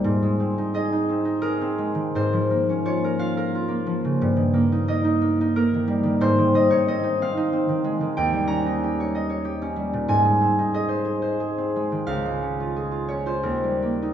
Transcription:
0.00 0.57 D#4 soft
0.04 2.14 G#2 medium
0.22 1.77 G#3 soft
0.40 1.08 C4 soft
0.58 0.91 D#4 soft
0.74 1.41 G#4 medium
0.74 2.16 D#5 medium
0.92 1.24 D#4 medium
1.09 1.60 C4 soft
1.25 2.16 D#4 medium
1.42 4.19 G#4 medium
1.42 2.62 A#4 medium
1.61 2.17 C4 medium
1.78 4.19 G#3 medium
1.95 2.16 D#3 soft
2.15 4.20 G#2 medium
2.15 3.31 C5 medium
2.33 3.85 F3 soft
2.51 3.67 A#3 soft
2.69 4.20 C#4 soft
2.85 3.18 F4 medium
2.85 4.20 C#5 medium
3.04 3.36 A#4 medium
3.19 3.54 F4 medium
3.19 4.20 F5 medium
3.37 5.55 A#4 medium
3.55 4.22 F4 medium
3.68 4.53 A#3 medium
3.87 4.21 F3 medium
4.05 4.22 C#3 soft
4.22 6.22 G2 medium
4.36 5.73 D#3 soft
4.54 4.87 A#3 medium
4.72 5.03 D#4 medium
4.88 5.20 A#3 medium
4.88 6.54 D#5 medium
5.04 5.40 D#4 medium
5.22 5.55 A#3 medium
5.41 6.69 D#4 medium
5.56 6.22 A#3 medium
5.56 6.22 A#4 medium
5.74 6.02 D#3 medium
5.88 6.21 G3 medium
6.03 6.21 D#3 medium
6.21 8.20 G#2 medium
6.21 8.20 C5 loud
6.38 7.68 D#3 soft
6.54 6.87 C4 medium
6.54 6.80 D#5 medium
6.70 7.02 D#4 medium
6.70 6.96 C#5 medium
6.88 7.20 C4 medium
6.88 9.14 D#5 medium
7.03 7.36 D#4 medium
7.22 7.52 C4 medium
7.22 8.88 F5 medium
7.37 8.65 D#4 medium
7.53 8.20 C4 medium
7.69 8.00 D#3 medium
7.84 8.19 G#3 medium
8.01 8.19 D#3 medium
8.17 10.14 D#2 medium
8.17 10.13 G5 medium
8.33 9.75 G3 medium
8.47 9.61 C#4 medium
8.47 10.12 A#5 medium
8.66 10.58 D#4 medium
8.83 9.43 G4 medium
9.00 9.28 C#5 medium
9.15 10.73 D#5 medium
9.30 10.12 C#5 medium
9.45 10.12 G4 medium
9.62 10.12 C#4 medium
9.76 10.12 G3 medium
9.93 10.12 A#2 medium
10.08 12.11 G#2 medium
10.08 13.47 G#5 loud
10.25 11.75 G#3 soft
10.41 11.57 C4 soft
10.59 12.12 D#4 soft
10.74 11.04 G#4 soft
10.74 12.12 D#5 medium
10.89 11.21 C5 medium
11.05 11.39 G#4 soft
11.22 12.10 C5 soft
11.40 12.75 G#4 soft
11.58 12.11 C4 soft
11.76 12.25 G#3 medium
11.92 12.11 D#3 soft
12.07 13.47 C#2 medium
12.07 13.46 F5 medium
12.26 13.47 G#3 soft
12.42 13.09 C#4 soft
12.60 12.90 F4 soft
12.76 13.48 G#4 soft
12.91 13.25 F4 soft
13.08 13.48 C#4 soft
13.08 13.47 C#5 medium
13.26 13.47 F4 soft
13.26 13.57 C5 medium
13.43 14.13 D#2 soft
13.43 14.13 A#4 medium
13.64 14.13 G3 soft
13.82 14.13 A#3 soft
14.02 14.13 D#4 soft

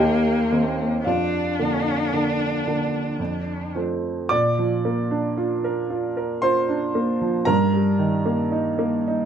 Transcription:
0.00 0.49 D#2 medium
0.00 1.05 A#3 medium
0.00 1.01 G4 medium
0.00 1.01 D#5 medium
0.00 1.04 G5 medium
0.52 1.01 D#3 soft
0.52 1.01 A#3 soft
0.52 1.02 C4 soft
1.05 1.58 F2 soft
1.05 3.70 D4 medium
1.05 3.16 F4 medium
1.05 3.16 D5 soft
1.05 3.19 F5 medium
1.59 2.08 D3 soft
1.59 2.08 A#3 soft
1.59 2.09 D4 soft
2.13 2.62 D3 soft
2.13 2.62 A#3 soft
2.13 2.62 D4 soft
2.67 3.16 D3 soft
2.67 3.16 A#3 soft
2.67 3.16 D4 soft
3.19 3.73 F2 soft
3.75 4.26 F3 soft
3.75 4.27 A3 soft
3.75 4.26 C4 soft
4.29 7.45 A#2 medium
4.29 6.40 D5 medium
4.29 6.43 D6 loud
4.59 5.01 F3 medium
4.85 5.27 A#3 medium
5.11 5.53 D4 medium
5.38 5.80 F4 medium
5.64 6.07 A#4 medium
5.90 6.33 F4 medium
6.17 6.59 A#4 medium
6.42 6.85 F4 medium
6.42 7.43 C5 medium
6.42 7.47 C6 medium
6.69 7.11 D4 medium
6.95 7.37 A#3 medium
7.21 7.47 F3 medium
7.45 9.25 G2 medium
7.45 9.25 A#4 medium
7.45 9.25 A#5 loud
7.74 8.15 G3 medium
7.99 8.41 D#3 medium
8.26 8.68 A#3 medium
8.52 8.96 D#4 medium
8.79 9.24 A#3 medium
9.08 9.25 D#4 medium

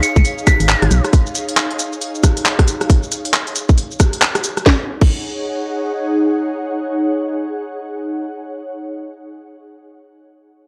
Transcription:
0.00 2.90 D#4 medium
0.00 2.90 G#4 medium
0.00 2.90 C#5 medium
0.00 2.90 F5 medium
0.00 0.22 C#7 medium
0.00 closed hi-hat loud
0.00 shaker medium
0.16 0.23 C#2 loud
0.16 kick loud
0.16 shaker soft
0.25 closed hi-hat medium
0.25 shaker soft
0.38 shaker soft
0.47 0.91 B6 medium
0.47 kick loud
0.47 cross-stick medium
0.47 closed hi-hat loud
0.47 shaker medium
0.60 0.75 G#1 medium
0.60 closed hi-hat medium
0.60 shaker soft
0.69 clap loud
0.69 shaker soft
0.82 0.89 G#1 medium
0.82 cross-stick medium
0.82 closed hi-hat medium
0.91 1.01 B1 loud
0.91 closed hi-hat loud
0.91 shaker medium
1.04 cross-stick medium
1.04 closed hi-hat soft
1.04 shaker soft
1.13 kick loud
1.13 closed hi-hat medium
1.13 shaker soft
1.26 shaker soft
1.35 closed hi-hat loud
1.35 shaker medium
1.49 closed hi-hat medium
1.49 shaker soft
1.57 clap loud
1.57 shaker soft
1.71 closed hi-hat soft
1.79 closed hi-hat loud
1.79 shaker medium
1.93 shaker soft
2.01 closed hi-hat medium
2.01 shaker soft
2.15 shaker soft
2.23 kick loud
2.23 cross-stick medium
2.23 closed hi-hat loud
2.23 shaker medium
2.37 closed hi-hat medium
2.37 shaker soft
2.46 clap loud
2.46 shaker soft
2.59 kick loud
2.59 cross-stick medium
2.59 closed hi-hat medium
2.68 closed hi-hat loud
2.68 shaker medium
2.81 cross-stick medium
2.81 closed hi-hat soft
2.81 shaker soft
2.90 kick loud
2.90 closed hi-hat medium
2.90 shaker soft
3.03 shaker soft
3.12 closed hi-hat loud
3.12 shaker medium
3.25 closed hi-hat medium
3.25 shaker soft
3.34 clap loud
3.34 shaker soft
3.47 closed hi-hat soft
3.47 shaker soft
3.56 closed hi-hat loud
3.56 shaker medium
3.69 kick loud
3.69 shaker soft
3.78 closed hi-hat medium
3.78 shaker soft
3.91 shaker soft
4.00 kick loud
4.00 cross-stick medium
4.00 closed hi-hat loud
4.00 shaker medium
4.13 closed hi-hat medium
4.13 shaker soft
4.22 clap loud
4.22 shaker soft
4.35 cross-stick medium
4.35 closed hi-hat medium
4.35 shaker soft
4.44 closed hi-hat loud
4.44 shaker medium
4.57 cross-stick medium
4.57 closed hi-hat soft
4.57 shaker soft
4.66 8.17 D#4 medium
4.66 kick loud
4.66 snare medium
4.74 8.25 G#4 medium
4.81 8.32 C#5 medium
4.86 8.37 F#5 medium
5.01 kick loud
5.01 crash medium

